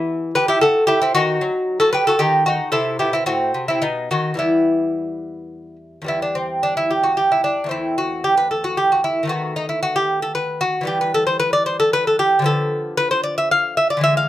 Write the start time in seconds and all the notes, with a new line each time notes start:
Already playing: E3 B3 E4
0.35 G4 B4
0.48 E4 G4
0.61 F#4 A4
0.87 E4 G4
1.02 C4 E4
1.15 D#3 D#4 F#4
1.41 F#3
1.80 F#4 A4
1.93 G4 B4
2.07 F#4 A4
2.19 D#3 D#4 G4
2.46 D#4 F#4
2.72 C3 E4 A4
2.99 B2 E4 G4
3.13 C4 E4
3.26 A2 C4 F#4
3.54 C3
3.68 C4 E4
3.82 B2 B3 D#4
4.11 D#3 D#4 F#4
4.34 E2 E3 G3
4.39 B3 E4
6.02 E2 G3
6.06 B3 E4
6.22 D4
6.35 C4
6.63 D4
6.77 E4
6.91 G4
7.04 F#4
7.17 G4
7.32 E4
7.44 D4
7.64 E2 A3
7.69 C4 E4
7.98 F#4
8.24 G4
8.37 B4
8.51 A4
8.64 F#4
8.77 G4
8.92 F#4
9.04 E4
9.23 D#3 A3
9.27 B3 F#4
9.56 D#4
9.69 E4
9.83 F#4
9.96 G4
10.22 A4
10.35 B4
10.61 F#4
10.81 E3 G3
10.85 B3 G4
11.01 B4
11.14 A4
11.27 C5
11.40 B4
11.53 D5
11.66 C5
11.80 A4
11.93 B4
12.07 A4
12.19 G4
12.39 D3 F3
12.44 B3 A4
12.97 B4
13.11 C5
13.23 D5
13.38 E5
13.51 F5
13.77 E5
13.90 D5
13.97 D3 E3
14.01 G#3 E5
14.17 F5